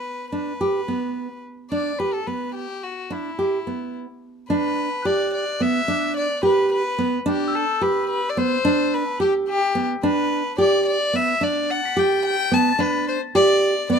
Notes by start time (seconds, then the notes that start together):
Already playing: B4
0.32 D4 B4
0.61 G4
0.88 B3
1.71 D4 D5
1.99 G4 B4
2.13 A4
2.27 B3 B4
2.55 G4
2.83 F#4
3.10 D4 E4
3.39 G4
3.67 B3
4.50 D4 B4
5.02 G4 D5 F#6
5.34 D5
5.60 B3 E5
5.88 D4
6.17 D5
6.43 G4 B4
6.72 B4
6.98 B3
7.26 D4 G4
7.48 E6
7.53 A4 G6
7.81 G4 B4
8.10 B4
8.29 D5
8.37 B3 C5
8.65 D4
8.94 B4
9.20 G4
9.49 G4
9.75 B3
10.03 D4 B4
10.58 G4 D5
10.86 D5
11.13 B3 E5
11.41 D4 D5
11.70 F#5 A6
11.85 B6
11.97 G4 G5
12.25 G5
12.52 B3 A5
12.70 A6
12.79 D4 B4
13.08 C5
13.35 G4 D5
13.90 B3 D5